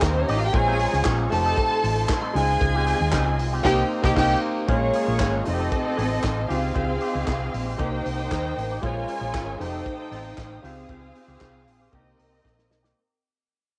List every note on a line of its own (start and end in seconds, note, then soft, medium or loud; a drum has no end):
0.00 0.23 D#2 loud
0.00 0.51 A#3 medium
0.00 0.11 A#3 medium
0.00 0.51 C4 medium
0.00 0.52 D#4 medium
0.00 0.52 G4 medium
0.00 0.53 G4 loud
0.00 0.11 A#4 medium
0.00 0.52 D#5 medium
0.00 1.30 A#5 medium
0.00 0.51 C6 medium
0.00 muted clean electric guitar stroke soft
0.00 kick loud
0.00 snare loud
0.00 clap loud
0.00 closed hi-hat medium
0.00 cowbell medium
0.11 0.20 C4 medium
0.11 0.20 C5 medium
0.16 muted clean electric guitar stroke medium
0.20 0.28 C#4 medium
0.20 0.28 C#5 medium
0.28 0.49 A1 medium
0.28 0.48 A#3 medium
0.28 0.41 D#4 loud
0.28 0.37 D#4 medium
0.28 0.40 G4 loud
0.28 0.37 D#5 medium
0.28 open hi-hat medium
0.38 0.46 F4 medium
0.38 0.46 F5 medium
0.38 muted clean electric guitar stroke soft
0.46 0.54 G4 medium
0.46 0.54 G5 loud
0.53 0.85 A#1 loud
0.53 1.31 G#3 medium
0.53 1.30 C4 medium
0.53 1.31 C#4 medium
0.53 1.32 F4 loud
0.53 1.31 G#4 medium
0.53 1.05 G#4 medium
0.53 1.31 F5 medium
0.53 1.05 G#5 loud
0.53 1.32 C#6 medium
0.53 muted clean electric guitar stroke soft
0.53 kick loud
0.53 closed hi-hat medium
0.53 cowbell medium
0.67 0.78 C#4 medium
0.67 0.79 F4 medium
0.67 0.79 G#4 loud
0.79 0.95 C#4 medium
0.79 0.93 F4 medium
0.79 0.92 G#4 medium
0.79 open hi-hat medium
0.93 1.04 C#2 medium
0.93 muted clean electric guitar stroke medium
0.93 snare soft
1.04 1.27 A#1 medium
1.04 1.25 C#4 medium
1.04 1.19 F4 medium
1.04 1.19 G#4 loud
1.04 kick loud
1.04 snare loud
1.04 clap loud
1.04 closed hi-hat medium
1.04 cowbell medium
1.20 muted clean electric guitar stroke medium
1.30 1.53 F1 loud
1.30 2.32 A3 medium
1.30 2.33 C4 medium
1.30 2.33 D#4 medium
1.30 2.33 F4 medium
1.30 2.34 G4 medium
1.30 2.08 A4 loud
1.30 4.65 D#5 medium
1.30 2.08 A5 loud
1.30 2.34 A5 medium
1.30 3.62 C6 loud
1.30 muted clean electric guitar stroke soft
1.30 open hi-hat medium
1.45 1.57 C4 medium
1.45 1.57 D#4 medium
1.45 1.58 A4 medium
1.57 muted clean electric guitar stroke medium
1.57 kick loud
1.57 closed hi-hat medium
1.57 cowbell medium
1.71 muted clean electric guitar stroke medium
1.84 2.04 A1 medium
1.84 open hi-hat medium
1.96 muted clean electric guitar stroke soft
2.08 muted clean electric guitar stroke medium
2.08 kick loud
2.08 snare loud
2.08 clap loud
2.08 closed hi-hat medium
2.08 cowbell medium
2.22 2.34 C4 medium
2.22 2.35 D#4 medium
2.22 2.36 A4 medium
2.34 2.56 C#2 loud
2.34 3.61 G#3 medium
2.34 3.62 C4 medium
2.34 3.62 D#4 medium
2.34 3.63 F4 medium
2.34 3.37 G#4 medium
2.34 3.63 G#5 medium
2.34 3.37 G#5 loud
2.34 muted clean electric guitar stroke soft
2.34 open hi-hat medium
2.48 muted clean electric guitar stroke medium
2.61 2.92 C#2 loud
2.61 muted clean electric guitar stroke soft
2.61 kick loud
2.61 closed hi-hat medium
2.61 cowbell medium
2.74 2.85 C4 medium
2.74 2.85 F4 medium
2.74 2.86 G4 medium
2.86 3.02 C4 medium
2.86 2.99 F4 medium
2.86 2.99 G4 medium
2.86 open hi-hat medium
3.00 3.11 D#2 medium
3.00 muted clean electric guitar stroke medium
3.12 3.39 C#2 medium
3.12 3.33 C4 medium
3.12 3.26 F4 medium
3.12 3.25 G4 medium
3.12 kick loud
3.12 snare loud
3.12 clap loud
3.12 cowbell medium
3.26 muted clean electric guitar stroke soft
3.39 3.60 C2 medium
3.39 muted clean electric guitar stroke soft
3.39 open hi-hat medium
3.53 3.65 C4 medium
3.53 3.66 F4 medium
3.53 3.65 G4 medium
3.63 3.82 C2 medium
3.63 3.82 A#3 loud
3.63 3.83 A#3 loud
3.63 3.82 C4 loud
3.63 3.83 D#4 loud
3.63 4.67 G4 medium
3.63 3.83 G4 loud
3.63 3.84 G4 loud
3.63 3.82 G5 loud
3.63 4.66 A#5 medium
3.63 4.67 C6 medium
3.63 kick loud
3.63 snare loud
3.63 crash medium
4.02 4.15 C2 loud
4.02 4.14 A#3 medium
4.02 4.14 C4 loud
4.02 4.15 D#4 loud
4.02 4.15 G4 loud
4.02 4.16 G4 loud
4.02 4.15 G4 loud
4.02 4.15 G5 loud
4.02 kick loud
4.02 snare loud
4.16 4.34 C2 loud
4.16 4.34 A#3 loud
4.16 4.34 C4 loud
4.16 4.34 D#4 loud
4.16 4.35 D#4 loud
4.16 4.34 G4 loud
4.16 4.35 G4 loud
4.16 4.35 G5 loud
4.16 kick loud
4.16 snare loud
4.16 crash medium
4.67 4.89 A#1 loud
4.67 5.46 G#3 medium
4.67 5.46 A#3 medium
4.67 5.45 A#3 medium
4.67 4.88 C#4 medium
4.67 5.47 C#4 medium
4.67 4.81 F4 medium
4.67 5.46 F4 medium
4.67 5.45 G#4 medium
4.67 4.80 G#4 loud
4.67 5.45 G#4 medium
4.67 5.45 C#5 medium
4.67 5.45 F5 medium
4.67 5.45 A#5 medium
4.67 5.45 C#6 medium
4.67 kick loud
4.67 closed hi-hat medium
4.67 cowbell medium
4.81 muted clean electric guitar stroke soft
4.93 5.07 C#4 medium
4.93 5.07 F4 medium
4.93 5.06 G#4 medium
4.93 open hi-hat medium
5.07 5.18 A#1 loud
5.07 5.19 C#4 medium
5.07 5.20 F4 medium
5.07 5.20 G#4 medium
5.19 5.41 G#1 loud
5.19 5.40 C#4 medium
5.19 5.32 F4 medium
5.19 5.32 G#4 loud
5.19 kick loud
5.19 snare loud
5.19 clap medium
5.19 closed hi-hat medium
5.19 cowbell medium
5.33 muted clean electric guitar stroke soft
5.44 5.68 F1 loud
5.44 6.47 A3 medium
5.44 6.47 C4 medium
5.44 6.48 C4 medium
5.44 6.48 D#4 medium
5.44 7.76 F4 medium
5.44 5.53 F4 medium
5.44 6.48 A4 medium
5.44 8.79 D#5 medium
5.44 6.48 D#5 medium
5.44 6.48 A5 medium
5.44 8.79 C6 medium
5.44 muted clean electric guitar stroke soft
5.44 open hi-hat medium
5.53 6.47 G4 medium
5.59 5.71 C4 medium
5.59 5.71 D#4 medium
5.59 5.71 A4 medium
5.72 muted clean electric guitar stroke soft
5.72 kick loud
5.72 closed hi-hat medium
5.72 cowbell medium
5.84 5.95 C4 medium
5.84 5.96 D#4 medium
5.84 5.96 A4 medium
5.96 6.19 A1 medium
5.96 6.17 C4 medium
5.96 6.10 D#4 medium
5.96 6.09 A4 medium
5.96 open hi-hat medium
6.10 muted clean electric guitar stroke soft
6.23 6.45 A1 loud
6.23 muted clean electric guitar stroke soft
6.23 kick loud
6.23 snare loud
6.23 clap medium
6.23 cowbell medium
6.35 muted clean electric guitar stroke medium
6.48 6.71 C#2 loud
6.48 6.68 C4 medium
6.48 7.76 C4 medium
6.48 7.77 C4 medium
6.48 7.77 D#4 medium
6.48 6.62 F4 medium
6.48 7.78 F4 medium
6.48 7.76 G4 medium
6.48 6.61 G4 loud
6.48 7.77 G#4 medium
6.48 7.77 F5 medium
6.48 7.77 G5 medium
6.48 open hi-hat medium
6.62 muted clean electric guitar stroke soft
6.74 6.96 C#2 loud
6.74 6.94 C4 medium
6.74 6.87 F4 loud
6.74 6.86 G4 medium
6.74 kick loud
6.74 closed hi-hat medium
6.74 cowbell medium
6.87 muted clean electric guitar stroke soft
7.01 7.13 C4 medium
7.01 7.13 F4 medium
7.01 7.12 G4 medium
7.01 open hi-hat medium
7.14 7.25 C#2 medium
7.14 7.24 C4 medium
7.14 7.25 F4 medium
7.14 7.26 G4 medium
7.25 7.48 C2 medium
7.25 7.46 C4 medium
7.25 7.40 F4 loud
7.25 7.39 G4 medium
7.25 kick loud
7.25 snare loud
7.25 clap medium
7.25 cowbell medium
7.40 muted clean electric guitar stroke medium
7.52 7.75 A#1 loud
7.52 muted clean electric guitar stroke soft
7.52 open hi-hat medium
7.65 7.78 C4 medium
7.65 7.78 F4 medium
7.65 7.78 G4 medium
7.78 8.00 C2 loud
7.78 8.80 A#3 medium
7.78 7.99 A#3 loud
7.78 8.80 C4 medium
7.78 7.92 D#4 loud
7.78 8.81 D#4 medium
7.78 7.90 G4 loud
7.78 8.81 G4 medium
7.78 9.59 A#4 medium
7.78 8.81 C5 medium
7.78 8.81 G5 medium
7.78 8.82 G5 medium
7.78 kick loud
7.78 closed hi-hat medium
7.78 cowbell medium
7.92 muted clean electric guitar stroke medium
8.05 8.26 C2 medium
8.05 muted clean electric guitar stroke soft
8.05 open hi-hat medium
8.18 8.30 A#3 medium
8.18 8.31 D#4 medium
8.18 8.32 G4 medium
8.31 8.52 D#2 loud
8.31 8.51 A#3 medium
8.31 8.43 D#4 medium
8.31 8.44 A#4 medium
8.31 kick loud
8.31 snare loud
8.31 clap medium
8.31 closed hi-hat medium
8.31 cowbell medium
8.45 muted clean electric guitar stroke soft
8.57 8.78 A1 medium
8.57 muted clean electric guitar stroke soft
8.57 open hi-hat medium
8.71 8.84 A#3 medium
8.71 8.84 D#4 medium
8.71 8.85 G4 medium
8.82 9.04 A#1 loud
8.82 9.60 G#3 medium
8.82 9.60 C#4 medium
8.82 9.03 C#4 medium
8.82 9.60 F4 loud
8.82 9.59 F4 medium
8.82 8.95 F4 loud
8.82 8.95 G#4 loud
8.82 9.60 C5 medium
8.82 9.59 C#5 medium
8.82 11.91 F5 medium
8.82 9.59 G#5 medium
8.82 9.60 G#5 medium
8.82 9.60 A#5 medium
8.82 kick loud
8.82 closed hi-hat medium
8.82 cowbell medium
8.96 muted clean electric guitar stroke soft
9.08 9.21 C#4 medium
9.08 9.20 F4 medium
9.08 9.19 G#4 medium
9.08 open hi-hat medium
9.21 9.32 A#1 medium
9.21 9.31 C#4 medium
9.21 9.32 F4 medium
9.21 9.33 G#4 medium
9.32 9.55 G#1 medium
9.32 9.53 C#4 medium
9.32 9.47 F4 loud
9.32 9.46 G#4 medium
9.32 kick loud
9.32 snare loud
9.32 clap loud
9.32 closed hi-hat medium
9.32 cowbell medium
9.47 muted clean electric guitar stroke soft
9.58 9.81 F1 loud
9.58 10.61 A3 medium
9.58 10.61 C4 medium
9.58 10.61 D#4 medium
9.58 10.61 G4 medium
9.58 12.94 C5 medium
9.58 10.62 C5 medium
9.58 10.62 G5 medium
9.58 10.63 A5 medium
9.58 12.93 D#6 medium
9.58 muted clean electric guitar stroke soft
9.58 open hi-hat medium
9.62 10.63 D#4 medium
9.72 9.84 C4 medium
9.72 9.85 D#4 medium
9.72 9.85 A4 medium
9.85 muted clean electric guitar stroke soft
9.85 kick loud
9.85 closed hi-hat medium
9.85 cowbell medium
9.97 10.10 C4 soft
9.97 10.10 D#4 medium
9.97 10.11 A4 medium
10.11 10.32 A1 medium
10.11 10.31 C4 medium
10.11 10.24 D#4 medium
10.11 10.23 A4 medium
10.11 open hi-hat medium
10.24 muted clean electric guitar stroke soft
10.37 10.59 A1 loud
10.37 muted clean electric guitar stroke soft
10.37 kick loud
10.37 snare loud
10.37 clap medium
10.37 closed hi-hat medium
10.37 cowbell medium
10.50 muted clean electric guitar stroke medium
10.62 10.84 C#2 loud
10.62 10.83 C4 medium
10.62 11.90 C4 medium
10.62 11.91 C4 medium
10.62 11.91 D#4 medium
10.62 10.77 F4 medium
10.62 11.91 F4 medium
10.62 11.90 G4 medium
10.62 10.75 G4 medium
10.62 11.91 G#4 medium
10.62 11.91 F5 medium
10.62 12.94 G5 medium
10.62 open hi-hat medium
10.77 muted clean electric guitar stroke soft
10.89 11.10 C#2 loud
10.89 11.09 C4 medium
10.89 11.02 F4 loud
10.89 11.01 G4 loud
10.89 kick loud
10.89 closed hi-hat medium
10.89 cowbell medium
11.03 muted clean electric guitar stroke soft
11.15 11.28 C4 medium
11.15 11.28 F4 medium
11.15 11.27 G4 medium
11.15 open hi-hat medium
11.28 11.39 C#2 loud
11.28 11.40 C4 medium
11.28 11.40 F4 medium
11.28 11.41 G4 medium
11.40 11.66 C2 medium
11.40 11.61 C4 medium
11.40 11.54 F4 medium
11.40 11.53 G4 loud
11.40 kick loud
11.40 snare loud
11.40 clap medium
11.40 closed hi-hat medium
11.40 cowbell medium
11.54 muted clean electric guitar stroke soft
11.66 11.88 A#1 medium
11.66 muted clean electric guitar stroke soft
11.66 open hi-hat medium
11.80 11.94 C4 medium
11.80 11.94 F4 medium
11.80 11.94 G4 medium
11.92 12.14 C2 loud
11.92 12.94 A#3 medium
11.92 12.13 A#3 medium
11.92 12.94 C4 medium
11.92 12.95 C4 medium
11.92 12.00 D4 medium
11.92 12.07 D#4 medium
11.92 12.95 G4 medium
11.92 12.06 G4 loud
11.92 12.95 A#4 medium
11.92 12.95 D#5 medium
11.92 12.96 A#5 medium
11.92 kick loud
11.92 closed hi-hat medium
11.92 cowbell medium
12.00 12.98 D#4 medium
12.07 muted clean electric guitar stroke soft
12.19 12.40 C2 medium
12.19 muted clean electric guitar stroke soft
12.19 open hi-hat medium
12.32 12.43 A#3 soft
12.32 12.44 D#4 medium
12.32 12.45 G4 medium
12.44 12.70 A#1 medium
12.44 12.64 A#3 medium
12.44 12.58 D#4 medium
12.44 12.57 A#4 medium
12.44 kick loud
12.44 snare medium
12.44 cowbell medium
12.57 muted clean electric guitar stroke medium
12.57 snare medium
12.70 12.91 B1 loud
12.70 muted clean electric guitar stroke soft
12.70 snare loud
12.83 12.99 A#3 soft
12.83 12.99 D#4 medium
12.83 12.99 G4 medium
12.83 snare medium